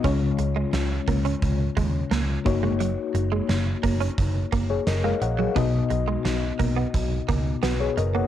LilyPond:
<<
  \new Staff \with { instrumentName = "FM electric piano" } { \time 4/4 \key ges \major \tempo 4 = 87 << { r1 | r2 r8. <aes' des''>16 <bes' ees''>16 <bes' f''>16 <des'' ges''>16 <aes' des''>16~ | <aes' des''>16 r2 r8. <ges' ces''>16 <aes' des''>16 <bes' ees''>16 <des'' ges''>16 | } \\ { <des aes des' f' des''>4. r2 <bes ees' ges' des''>8~ | <bes ees' ges' des''>4 r2. | <ces ces' ees' ges' ees''>4. r2 r8 | } >> }
  \new Staff \with { instrumentName = "Clean electric guitar" } { \time 4/4 \key ges \major des'16 r8 aes16 r8 bes16 des'16 r8 aes16 r16 bes16 r8 aes16 | ges16 r8 aes16 r8 bes16 des'16 r8 bes16 r8 aes16 r16 ges16 | ces'16 r8 aes16 r8 bes16 ces'16 r8 bes16 r16 ces'16 r8 bes16 | }
  \new Staff \with { instrumentName = "Picked electric bass" } { \clef bass \time 4/4 \key ges \major des,8 des,8 des,8 des,8 des,8 ees,8 des,8 ges,,8~ | ges,,8 ges,,8 ges,,8 ges,,8 ges,,8 ges,,8 ges,,8 bes,,8 | ces,8 ces,8 ces,8 ces,8 ces,8 des,8 ces,8 ges,,8 | }
  \new DrumStaff \with { instrumentName = "Drums" } \drummode { \time 4/4 <hh bd>8 hh8 <hh sn>8 <hh bd>16 hh16 <hh bd>8 <hh bd>8 <hh sn>8 <hh bd>8 | hh8 hh8 <hh sn>8 <hh bd>16 hh16 <hh bd>8 <hh bd>8 <hh sn>8 hh8 | <hh bd>8 hh8 <hh sn>8 <hh bd>8 <hh bd>8 <hh bd>8 <hh sn>8 hh8 | }
>>